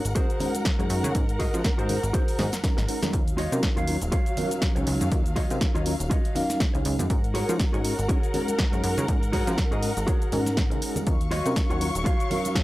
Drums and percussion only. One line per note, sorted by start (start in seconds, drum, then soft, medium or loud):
0.05 closed hi-hat soft
0.05 tambourine medium
0.05 shaker medium
0.16 kick loud
0.16 closed hi-hat medium
0.16 tambourine soft
0.16 high conga medium
0.16 shaker medium
0.30 closed hi-hat soft
0.30 shaker soft
0.40 open hi-hat loud
0.40 tambourine medium
0.40 low conga medium
0.55 closed hi-hat soft
0.55 tambourine medium
0.55 high conga medium
0.55 shaker medium
0.65 kick loud
0.65 snare loud
0.65 closed hi-hat medium
0.65 tambourine soft
0.65 shaker medium
0.80 closed hi-hat soft
0.80 shaker soft
0.89 open hi-hat loud
0.89 tambourine loud
1.03 closed hi-hat soft
1.03 tambourine medium
1.03 high conga medium
1.03 low conga medium
1.03 shaker medium
1.15 kick loud
1.15 closed hi-hat medium
1.15 tambourine soft
1.15 shaker medium
1.29 closed hi-hat soft
1.29 shaker soft
1.40 kick medium
1.40 open hi-hat loud
1.40 tambourine medium
1.40 high conga medium
1.53 closed hi-hat soft
1.53 tambourine medium
1.53 shaker medium
1.64 kick loud
1.64 snare loud
1.64 closed hi-hat medium
1.64 shaker medium
1.79 closed hi-hat soft
1.79 high conga medium
1.79 shaker soft
1.89 open hi-hat loud
1.89 tambourine loud
1.89 low conga medium
2.03 closed hi-hat soft
2.03 tambourine medium
2.03 shaker medium
2.14 kick loud
2.14 closed hi-hat medium
2.14 tambourine soft
2.14 high conga medium
2.14 shaker medium
2.28 open hi-hat medium
2.28 shaker soft
2.38 snare medium
2.38 open hi-hat loud
2.38 tambourine loud
2.38 low conga loud
2.52 snare medium
2.52 closed hi-hat soft
2.52 tambourine medium
2.52 high conga medium
2.52 shaker medium
2.64 kick loud
2.64 snare medium
2.64 closed hi-hat medium
2.64 shaker medium
2.78 snare medium
2.78 closed hi-hat soft
2.78 shaker soft
2.88 open hi-hat loud
2.88 tambourine loud
3.03 snare medium
3.03 closed hi-hat soft
3.03 tambourine medium
3.03 high conga loud
3.03 low conga medium
3.03 shaker medium
3.13 kick loud
3.13 closed hi-hat medium
3.13 tambourine soft
3.13 shaker medium
3.28 closed hi-hat soft
3.28 shaker soft
3.38 open hi-hat loud
3.38 tambourine medium
3.38 high conga medium
3.52 closed hi-hat soft
3.52 tambourine medium
3.52 shaker medium
3.63 kick loud
3.63 snare loud
3.63 closed hi-hat medium
3.63 shaker medium
3.77 closed hi-hat soft
3.77 high conga medium
3.77 shaker soft
3.88 open hi-hat loud
3.88 tambourine medium
4.01 closed hi-hat soft
4.01 tambourine medium
4.01 shaker medium
4.12 kick loud
4.12 closed hi-hat loud
4.12 tambourine soft
4.12 high conga loud
4.12 shaker medium
4.26 closed hi-hat soft
4.26 shaker soft
4.37 open hi-hat loud
4.37 tambourine loud
4.37 low conga loud
4.51 closed hi-hat soft
4.51 tambourine medium
4.51 high conga medium
4.51 shaker medium
4.62 kick loud
4.62 snare loud
4.62 closed hi-hat loud
4.62 tambourine soft
4.62 shaker medium
4.76 closed hi-hat soft
4.76 shaker soft
4.87 open hi-hat loud
4.87 tambourine medium
5.01 closed hi-hat soft
5.01 tambourine medium
5.01 high conga medium
5.01 low conga medium
5.01 shaker medium
5.12 kick loud
5.12 closed hi-hat medium
5.12 shaker medium
5.26 closed hi-hat soft
5.26 shaker soft
5.36 kick medium
5.36 open hi-hat loud
5.36 tambourine medium
5.36 high conga loud
5.50 closed hi-hat soft
5.50 tambourine medium
5.50 shaker medium
5.61 kick loud
5.61 snare loud
5.61 closed hi-hat medium
5.61 tambourine soft
5.61 shaker medium
5.75 closed hi-hat soft
5.75 high conga medium
5.75 shaker soft
5.86 open hi-hat loud
5.86 tambourine loud
6.00 closed hi-hat soft
6.00 tambourine medium
6.00 shaker medium
6.11 kick loud
6.11 closed hi-hat medium
6.11 tambourine soft
6.11 high conga medium
6.11 shaker medium
6.25 closed hi-hat soft
6.25 shaker soft
6.35 open hi-hat loud
6.35 tambourine medium
6.35 low conga medium
6.50 snare soft
6.50 closed hi-hat soft
6.50 tambourine soft
6.50 high conga medium
6.50 shaker medium
6.60 kick loud
6.60 snare loud
6.60 closed hi-hat loud
6.60 tambourine soft
6.60 shaker medium
6.75 closed hi-hat soft
6.75 shaker soft
6.85 open hi-hat loud
6.85 tambourine medium
6.99 closed hi-hat soft
6.99 tambourine medium
6.99 high conga loud
6.99 low conga medium
6.99 shaker medium
7.10 kick loud
7.10 closed hi-hat medium
7.10 tambourine soft
7.10 shaker medium
7.24 closed hi-hat soft
7.24 shaker soft
7.35 open hi-hat loud
7.35 tambourine medium
7.35 high conga loud
7.49 closed hi-hat soft
7.49 tambourine soft
7.49 shaker medium
7.59 kick loud
7.59 snare loud
7.59 closed hi-hat medium
7.59 tambourine soft
7.59 shaker medium
7.73 closed hi-hat soft
7.73 high conga medium
7.73 shaker soft
7.84 open hi-hat loud
7.84 tambourine loud
7.99 closed hi-hat soft
7.99 tambourine medium
7.99 shaker medium
8.09 kick loud
8.09 closed hi-hat medium
8.09 tambourine soft
8.09 high conga medium
8.09 shaker medium
8.23 closed hi-hat soft
8.23 shaker soft
8.34 open hi-hat loud
8.34 tambourine medium
8.34 low conga medium
8.48 closed hi-hat soft
8.48 tambourine medium
8.48 high conga medium
8.48 shaker medium
8.59 kick loud
8.59 snare loud
8.59 closed hi-hat medium
8.59 tambourine soft
8.59 shaker medium
8.73 closed hi-hat soft
8.73 shaker soft
8.84 open hi-hat loud
8.84 tambourine medium
8.98 closed hi-hat soft
8.98 tambourine soft
8.98 high conga loud
8.98 low conga medium
8.98 shaker medium
9.08 kick loud
9.08 closed hi-hat medium
9.08 tambourine soft
9.08 shaker medium
9.23 closed hi-hat soft
9.23 shaker soft
9.33 kick medium
9.33 open hi-hat loud
9.33 tambourine medium
9.33 high conga medium
9.47 closed hi-hat soft
9.47 tambourine medium
9.47 shaker medium
9.58 kick loud
9.58 snare loud
9.58 closed hi-hat medium
9.58 shaker medium
9.72 closed hi-hat soft
9.72 high conga medium
9.72 shaker soft
9.83 open hi-hat loud
9.83 tambourine medium
9.97 closed hi-hat soft
9.97 tambourine medium
9.97 shaker medium
10.07 kick loud
10.07 closed hi-hat medium
10.07 tambourine soft
10.07 high conga medium
10.07 shaker medium
10.22 closed hi-hat soft
10.22 shaker soft
10.32 open hi-hat loud
10.32 tambourine medium
10.32 low conga medium
10.46 snare soft
10.46 closed hi-hat soft
10.46 tambourine soft
10.46 high conga medium
10.46 shaker medium
10.57 kick loud
10.57 snare loud
10.57 closed hi-hat medium
10.57 tambourine soft
10.57 shaker medium
10.71 closed hi-hat soft
10.71 shaker soft
10.82 open hi-hat loud
10.82 tambourine medium
10.96 closed hi-hat soft
10.96 tambourine soft
10.96 high conga loud
10.96 low conga medium
10.96 shaker medium
11.07 kick loud
11.07 closed hi-hat medium
11.07 tambourine soft
11.07 shaker medium
11.21 closed hi-hat soft
11.21 shaker soft
11.31 open hi-hat loud
11.31 tambourine medium
11.31 high conga medium
11.46 closed hi-hat soft
11.46 tambourine medium
11.46 shaker medium
11.56 kick loud
11.56 snare loud
11.56 closed hi-hat medium
11.56 shaker medium
11.70 closed hi-hat soft
11.70 high conga medium
11.70 shaker soft
11.81 open hi-hat loud
11.81 tambourine medium
11.95 closed hi-hat soft
11.95 tambourine soft
11.95 shaker medium
12.06 kick loud
12.06 closed hi-hat medium
12.06 tambourine soft
12.06 high conga medium
12.06 shaker medium
12.20 closed hi-hat soft
12.20 shaker soft
12.31 open hi-hat loud
12.31 tambourine medium
12.31 low conga medium
12.45 closed hi-hat soft
12.45 tambourine medium
12.45 high conga medium
12.45 shaker medium
12.55 kick loud
12.55 snare loud
12.55 closed hi-hat medium
12.55 shaker medium